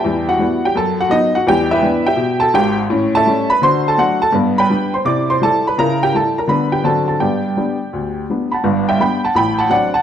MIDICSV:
0, 0, Header, 1, 2, 480
1, 0, Start_track
1, 0, Key_signature, 1, "major"
1, 0, Tempo, 358423
1, 51, Time_signature, 4, 2, 24, 8
1, 13423, End_track
2, 0, Start_track
2, 0, Title_t, "Upright piano"
2, 0, Program_c, 0, 0
2, 0, Note_on_c, 0, 67, 50
2, 0, Note_on_c, 0, 76, 46
2, 0, Note_on_c, 0, 79, 64
2, 60, Note_on_c, 0, 40, 66
2, 81, Note_on_c, 0, 55, 48
2, 295, Control_c, 0, 64, 127
2, 337, Note_off_c, 0, 55, 0
2, 352, Note_off_c, 0, 76, 0
2, 356, Note_off_c, 0, 67, 0
2, 382, Note_off_c, 0, 79, 0
2, 385, Note_on_c, 0, 78, 75
2, 394, Note_on_c, 0, 66, 56
2, 464, Note_off_c, 0, 40, 0
2, 527, Note_on_c, 0, 55, 36
2, 537, Note_on_c, 0, 64, 46
2, 541, Note_on_c, 0, 59, 36
2, 548, Control_c, 0, 64, 0
2, 792, Note_off_c, 0, 55, 0
2, 799, Note_off_c, 0, 64, 0
2, 802, Note_off_c, 0, 59, 0
2, 827, Note_off_c, 0, 66, 0
2, 855, Note_off_c, 0, 78, 0
2, 875, Note_on_c, 0, 79, 75
2, 893, Note_on_c, 0, 67, 57
2, 1008, Note_on_c, 0, 42, 70
2, 1024, Note_off_c, 0, 67, 0
2, 1025, Note_off_c, 0, 79, 0
2, 1032, Note_on_c, 0, 81, 81
2, 1041, Note_on_c, 0, 69, 69
2, 1258, Control_c, 0, 64, 127
2, 1320, Note_off_c, 0, 69, 0
2, 1337, Note_off_c, 0, 81, 0
2, 1346, Note_on_c, 0, 78, 82
2, 1360, Note_on_c, 0, 66, 60
2, 1417, Note_off_c, 0, 42, 0
2, 1463, Note_on_c, 0, 54, 50
2, 1485, Note_on_c, 0, 75, 90
2, 1489, Note_on_c, 0, 59, 42
2, 1497, Note_off_c, 0, 66, 0
2, 1501, Note_off_c, 0, 78, 0
2, 1505, Control_c, 0, 64, 0
2, 1505, Note_on_c, 0, 63, 62
2, 1735, Note_off_c, 0, 54, 0
2, 1753, Note_off_c, 0, 59, 0
2, 1792, Note_off_c, 0, 63, 0
2, 1803, Note_off_c, 0, 75, 0
2, 1810, Note_on_c, 0, 78, 79
2, 1833, Note_on_c, 0, 66, 65
2, 1969, Note_on_c, 0, 40, 78
2, 1972, Note_off_c, 0, 78, 0
2, 1973, Note_off_c, 0, 66, 0
2, 1988, Note_on_c, 0, 79, 93
2, 1998, Note_on_c, 0, 67, 73
2, 1999, Note_on_c, 0, 55, 49
2, 2215, Control_c, 0, 64, 127
2, 2255, Note_off_c, 0, 55, 0
2, 2278, Note_off_c, 0, 67, 0
2, 2294, Note_on_c, 0, 76, 87
2, 2295, Note_off_c, 0, 79, 0
2, 2307, Note_on_c, 0, 64, 67
2, 2310, Note_on_c, 0, 71, 66
2, 2377, Note_off_c, 0, 40, 0
2, 2447, Note_on_c, 0, 55, 45
2, 2450, Note_on_c, 0, 62, 45
2, 2454, Note_on_c, 0, 59, 39
2, 2466, Control_c, 0, 64, 0
2, 2712, Note_off_c, 0, 55, 0
2, 2714, Note_off_c, 0, 62, 0
2, 2717, Note_off_c, 0, 59, 0
2, 2743, Note_off_c, 0, 64, 0
2, 2745, Note_off_c, 0, 71, 0
2, 2763, Note_off_c, 0, 76, 0
2, 2766, Note_on_c, 0, 79, 82
2, 2779, Note_on_c, 0, 67, 58
2, 2783, Note_on_c, 0, 76, 60
2, 2894, Note_on_c, 0, 47, 73
2, 3212, Note_on_c, 0, 81, 92
2, 3219, Note_off_c, 0, 67, 0
2, 3221, Note_off_c, 0, 76, 0
2, 3237, Note_on_c, 0, 69, 65
2, 3245, Note_off_c, 0, 79, 0
2, 3317, Note_off_c, 0, 47, 0
2, 3393, Note_off_c, 0, 81, 0
2, 3394, Note_off_c, 0, 69, 0
2, 3401, Note_on_c, 0, 44, 69
2, 3402, Note_on_c, 0, 32, 75
2, 3413, Note_on_c, 0, 79, 89
2, 3422, Note_on_c, 0, 67, 67
2, 3710, Note_off_c, 0, 67, 0
2, 3727, Note_off_c, 0, 79, 0
2, 3788, Note_off_c, 0, 44, 0
2, 3789, Note_off_c, 0, 32, 0
2, 3882, Note_on_c, 0, 45, 86
2, 3907, Note_on_c, 0, 61, 56
2, 4136, Control_c, 0, 64, 127
2, 4166, Note_off_c, 0, 61, 0
2, 4219, Note_on_c, 0, 81, 103
2, 4241, Note_on_c, 0, 69, 72
2, 4244, Note_on_c, 0, 76, 66
2, 4293, Note_off_c, 0, 45, 0
2, 4372, Note_on_c, 0, 57, 43
2, 4377, Note_on_c, 0, 55, 37
2, 4384, Control_c, 0, 64, 0
2, 4385, Note_on_c, 0, 61, 51
2, 4636, Note_off_c, 0, 57, 0
2, 4639, Note_off_c, 0, 55, 0
2, 4645, Note_off_c, 0, 61, 0
2, 4671, Note_off_c, 0, 69, 0
2, 4673, Note_off_c, 0, 76, 0
2, 4685, Note_on_c, 0, 83, 88
2, 4692, Note_off_c, 0, 81, 0
2, 4706, Note_on_c, 0, 71, 61
2, 4844, Note_on_c, 0, 50, 69
2, 4849, Note_off_c, 0, 83, 0
2, 4850, Note_off_c, 0, 71, 0
2, 4862, Note_on_c, 0, 84, 92
2, 4864, Note_on_c, 0, 66, 50
2, 4866, Note_on_c, 0, 72, 73
2, 5091, Control_c, 0, 64, 127
2, 5124, Note_off_c, 0, 66, 0
2, 5152, Note_off_c, 0, 72, 0
2, 5172, Note_off_c, 0, 84, 0
2, 5196, Note_on_c, 0, 81, 86
2, 5201, Note_on_c, 0, 69, 66
2, 5255, Note_off_c, 0, 50, 0
2, 5325, Note_on_c, 0, 57, 45
2, 5330, Note_on_c, 0, 54, 50
2, 5333, Note_on_c, 0, 62, 48
2, 5337, Note_off_c, 0, 69, 0
2, 5342, Note_on_c, 0, 78, 81
2, 5345, Note_off_c, 0, 81, 0
2, 5347, Control_c, 0, 64, 0
2, 5359, Note_on_c, 0, 66, 66
2, 5590, Note_off_c, 0, 57, 0
2, 5594, Note_off_c, 0, 54, 0
2, 5596, Note_off_c, 0, 62, 0
2, 5639, Note_off_c, 0, 66, 0
2, 5648, Note_on_c, 0, 81, 86
2, 5652, Note_off_c, 0, 78, 0
2, 5661, Note_on_c, 0, 69, 60
2, 5793, Note_on_c, 0, 43, 74
2, 5807, Note_off_c, 0, 69, 0
2, 5812, Note_off_c, 0, 81, 0
2, 5819, Note_on_c, 0, 59, 57
2, 6046, Control_c, 0, 64, 127
2, 6081, Note_off_c, 0, 59, 0
2, 6135, Note_on_c, 0, 83, 87
2, 6157, Note_on_c, 0, 79, 69
2, 6160, Note_on_c, 0, 71, 64
2, 6208, Note_off_c, 0, 43, 0
2, 6295, Note_on_c, 0, 55, 44
2, 6304, Control_c, 0, 64, 0
2, 6306, Note_on_c, 0, 62, 47
2, 6558, Note_off_c, 0, 55, 0
2, 6566, Note_off_c, 0, 62, 0
2, 6589, Note_off_c, 0, 79, 0
2, 6591, Note_off_c, 0, 71, 0
2, 6611, Note_off_c, 0, 83, 0
2, 6613, Note_on_c, 0, 84, 68
2, 6631, Note_on_c, 0, 72, 62
2, 6761, Note_on_c, 0, 48, 63
2, 6771, Note_on_c, 0, 86, 90
2, 6772, Note_off_c, 0, 72, 0
2, 6774, Note_off_c, 0, 84, 0
2, 6782, Note_on_c, 0, 64, 39
2, 6790, Note_on_c, 0, 74, 65
2, 7012, Control_c, 0, 64, 127
2, 7043, Note_off_c, 0, 64, 0
2, 7075, Note_off_c, 0, 74, 0
2, 7087, Note_off_c, 0, 86, 0
2, 7097, Note_on_c, 0, 84, 81
2, 7109, Note_on_c, 0, 72, 61
2, 7174, Note_off_c, 0, 48, 0
2, 7252, Note_off_c, 0, 72, 0
2, 7254, Note_on_c, 0, 55, 50
2, 7255, Note_on_c, 0, 64, 47
2, 7257, Note_off_c, 0, 84, 0
2, 7270, Control_c, 0, 64, 0
2, 7273, Note_on_c, 0, 81, 91
2, 7292, Note_on_c, 0, 69, 72
2, 7517, Note_off_c, 0, 55, 0
2, 7518, Note_off_c, 0, 64, 0
2, 7567, Note_off_c, 0, 69, 0
2, 7578, Note_off_c, 0, 81, 0
2, 7598, Note_on_c, 0, 83, 70
2, 7616, Note_on_c, 0, 71, 55
2, 7741, Note_on_c, 0, 49, 72
2, 7746, Note_off_c, 0, 71, 0
2, 7747, Note_off_c, 0, 83, 0
2, 7751, Note_on_c, 0, 82, 91
2, 7761, Note_on_c, 0, 70, 65
2, 7763, Note_on_c, 0, 64, 48
2, 7970, Control_c, 0, 64, 127
2, 8019, Note_off_c, 0, 64, 0
2, 8041, Note_off_c, 0, 70, 0
2, 8057, Note_off_c, 0, 82, 0
2, 8075, Note_on_c, 0, 79, 82
2, 8088, Note_on_c, 0, 67, 59
2, 8146, Note_off_c, 0, 49, 0
2, 8223, Note_off_c, 0, 67, 0
2, 8226, Note_off_c, 0, 79, 0
2, 8229, Note_on_c, 0, 55, 35
2, 8230, Note_on_c, 0, 64, 43
2, 8233, Control_c, 0, 64, 0
2, 8243, Note_on_c, 0, 81, 69
2, 8254, Note_on_c, 0, 69, 54
2, 8489, Note_off_c, 0, 55, 0
2, 8489, Note_off_c, 0, 64, 0
2, 8528, Note_off_c, 0, 69, 0
2, 8544, Note_off_c, 0, 81, 0
2, 8547, Note_on_c, 0, 82, 61
2, 8558, Note_on_c, 0, 70, 50
2, 8672, Note_on_c, 0, 50, 62
2, 8681, Note_on_c, 0, 55, 35
2, 8684, Note_on_c, 0, 59, 41
2, 8689, Note_on_c, 0, 62, 30
2, 8692, Note_on_c, 0, 83, 75
2, 8698, Note_off_c, 0, 70, 0
2, 8703, Note_off_c, 0, 82, 0
2, 8715, Note_on_c, 0, 71, 49
2, 8924, Control_c, 0, 64, 127
2, 8948, Note_off_c, 0, 55, 0
2, 8951, Note_off_c, 0, 59, 0
2, 8954, Note_off_c, 0, 62, 0
2, 8999, Note_off_c, 0, 71, 0
2, 9003, Note_on_c, 0, 67, 50
2, 9003, Note_on_c, 0, 79, 67
2, 9008, Note_off_c, 0, 83, 0
2, 9089, Note_off_c, 0, 50, 0
2, 9158, Note_on_c, 0, 50, 62
2, 9159, Note_off_c, 0, 67, 0
2, 9162, Note_on_c, 0, 54, 36
2, 9164, Note_on_c, 0, 60, 43
2, 9171, Note_off_c, 0, 79, 0
2, 9171, Note_on_c, 0, 81, 73
2, 9172, Note_on_c, 0, 62, 34
2, 9183, Note_on_c, 0, 66, 42
2, 9188, Note_on_c, 0, 69, 51
2, 9192, Control_c, 0, 64, 0
2, 9425, Control_c, 0, 64, 127
2, 9430, Note_off_c, 0, 54, 0
2, 9431, Note_off_c, 0, 60, 0
2, 9436, Note_off_c, 0, 62, 0
2, 9445, Note_off_c, 0, 66, 0
2, 9459, Note_off_c, 0, 81, 0
2, 9471, Note_off_c, 0, 69, 0
2, 9479, Note_on_c, 0, 81, 60
2, 9491, Note_on_c, 0, 69, 47
2, 9573, Note_off_c, 0, 50, 0
2, 9644, Note_off_c, 0, 69, 0
2, 9644, Note_on_c, 0, 43, 55
2, 9646, Note_on_c, 0, 79, 64
2, 9649, Note_off_c, 0, 81, 0
2, 9658, Note_on_c, 0, 59, 37
2, 9665, Note_on_c, 0, 74, 44
2, 9666, Control_c, 0, 64, 0
2, 9666, Note_on_c, 0, 67, 46
2, 9896, Control_c, 0, 64, 127
2, 9921, Note_off_c, 0, 59, 0
2, 10057, Note_off_c, 0, 43, 0
2, 10138, Note_on_c, 0, 55, 31
2, 10140, Note_on_c, 0, 59, 36
2, 10142, Note_on_c, 0, 62, 37
2, 10152, Control_c, 0, 64, 0
2, 10401, Note_off_c, 0, 55, 0
2, 10403, Note_off_c, 0, 59, 0
2, 10404, Note_off_c, 0, 62, 0
2, 10622, Note_on_c, 0, 38, 50
2, 11027, Note_off_c, 0, 38, 0
2, 11047, Note_off_c, 0, 74, 0
2, 11048, Note_off_c, 0, 67, 0
2, 11091, Note_off_c, 0, 79, 0
2, 11113, Note_on_c, 0, 55, 30
2, 11122, Note_on_c, 0, 59, 34
2, 11128, Note_on_c, 0, 62, 37
2, 11372, Note_off_c, 0, 55, 0
2, 11378, Note_off_c, 0, 59, 0
2, 11383, Note_off_c, 0, 62, 0
2, 11404, Note_on_c, 0, 83, 59
2, 11426, Note_on_c, 0, 81, 52
2, 11430, Note_off_c, 0, 83, 0
2, 11442, Note_on_c, 0, 78, 41
2, 11565, Note_on_c, 0, 31, 66
2, 11570, Note_on_c, 0, 43, 75
2, 11818, Control_c, 0, 64, 127
2, 11872, Note_off_c, 0, 78, 0
2, 11896, Note_off_c, 0, 81, 0
2, 11901, Note_on_c, 0, 79, 78
2, 11913, Note_on_c, 0, 76, 65
2, 11978, Note_off_c, 0, 31, 0
2, 11980, Note_off_c, 0, 43, 0
2, 12049, Note_on_c, 0, 55, 38
2, 12051, Note_on_c, 0, 59, 41
2, 12056, Note_off_c, 0, 76, 0
2, 12058, Note_on_c, 0, 62, 38
2, 12060, Note_off_c, 0, 79, 0
2, 12064, Note_on_c, 0, 83, 73
2, 12072, Control_c, 0, 64, 0
2, 12080, Note_on_c, 0, 79, 66
2, 12315, Note_off_c, 0, 55, 0
2, 12316, Note_off_c, 0, 59, 0
2, 12321, Note_off_c, 0, 62, 0
2, 12362, Note_off_c, 0, 79, 0
2, 12375, Note_off_c, 0, 83, 0
2, 12381, Note_on_c, 0, 81, 71
2, 12394, Note_on_c, 0, 78, 49
2, 12520, Note_on_c, 0, 33, 57
2, 12526, Note_on_c, 0, 45, 57
2, 12536, Note_off_c, 0, 78, 0
2, 12538, Note_on_c, 0, 83, 90
2, 12540, Note_off_c, 0, 81, 0
2, 12561, Note_on_c, 0, 79, 67
2, 12781, Control_c, 0, 64, 127
2, 12835, Note_on_c, 0, 81, 83
2, 12842, Note_off_c, 0, 79, 0
2, 12852, Note_off_c, 0, 83, 0
2, 12859, Note_on_c, 0, 78, 65
2, 12934, Note_off_c, 0, 33, 0
2, 12938, Note_off_c, 0, 45, 0
2, 12978, Note_on_c, 0, 54, 47
2, 12979, Note_off_c, 0, 78, 0
2, 12994, Note_on_c, 0, 60, 39
2, 12999, Note_on_c, 0, 62, 47
2, 12999, Note_on_c, 0, 78, 90
2, 13007, Note_off_c, 0, 81, 0
2, 13019, Note_on_c, 0, 74, 59
2, 13031, Control_c, 0, 64, 0
2, 13252, Note_off_c, 0, 54, 0
2, 13263, Note_off_c, 0, 60, 0
2, 13267, Note_off_c, 0, 62, 0
2, 13307, Note_off_c, 0, 78, 0
2, 13310, Note_off_c, 0, 74, 0
2, 13311, Note_on_c, 0, 81, 83
2, 13327, Note_on_c, 0, 78, 60
2, 13423, Note_off_c, 0, 78, 0
2, 13423, Note_off_c, 0, 81, 0
2, 13423, End_track
0, 0, End_of_file